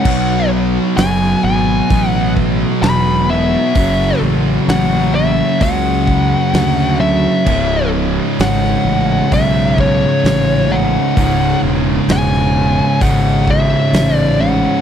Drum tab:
CC |x---------------|----------------|x---------------|----------------|
HH |----o---o---o---|o---o---o---o---|----o---o---o---|o---o---o---o---|
SD |----oo------o---|----o-------o---|----oo------o---|----oo------o---|
BD |o-------o-o-----|o-------o-o-----|o-------o-o-----|o-------o-o-----|